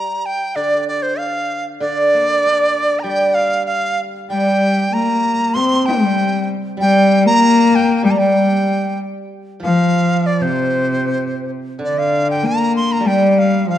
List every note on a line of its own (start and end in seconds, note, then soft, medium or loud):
0.00 1.19 G3 medium
0.00 0.27 A#5 medium
0.26 0.57 G5 medium
0.56 1.79 D3 medium
0.56 0.87 D5 medium
0.88 1.04 D5 medium
1.03 1.20 C5 medium
1.18 1.66 F5 medium
1.80 3.67 D3 medium
1.80 3.01 D5 loud
2.14 3.38 A#3 soft
2.46 3.69 D4 soft
2.99 3.36 G5 loud
2.99 3.04 A#5 medium
3.04 4.29 G3 medium
3.34 3.66 F5 medium
3.66 4.01 F5 medium
4.29 6.17 G3 soft
4.29 4.90 G3 medium
4.29 4.95 G5 medium
4.93 5.58 A#3 medium
4.93 5.56 A#5 medium
5.54 7.42 C3 medium
5.54 5.89 C4 medium
5.54 5.87 C6 loud
5.86 6.50 G3 medium
5.86 6.49 G5 medium
6.77 8.01 G3 medium
6.77 7.24 G5 loud
6.81 7.28 G3 medium
7.26 8.06 A#3 loud
7.26 7.77 A#5 loud
7.75 8.05 G5 medium
8.03 9.93 G3 medium
8.03 8.18 G3 medium
8.03 8.12 G5 medium
8.11 8.21 A#5 medium
8.19 8.95 G3 medium
8.19 8.99 G5 medium
9.60 11.49 F3 soft
9.60 10.43 F3 medium
9.60 10.28 F5 medium
10.26 10.43 D5 medium
10.42 11.51 C3 medium
10.42 11.51 C5 medium
11.79 13.66 D3 medium
11.79 12.44 D3 medium
11.84 12.00 D5 medium
11.98 12.28 F5 medium
12.30 12.48 G5 medium
12.43 13.07 A#3 medium
12.43 12.75 A#5 medium
12.76 12.94 C6 medium
12.92 13.08 A#5 medium
13.00 13.78 G3 medium
13.05 13.68 G3 medium
13.05 13.31 G5 medium
13.31 13.40 G5 medium
13.39 13.69 F5 medium
13.67 13.78 F3 medium
13.67 13.78 F5 medium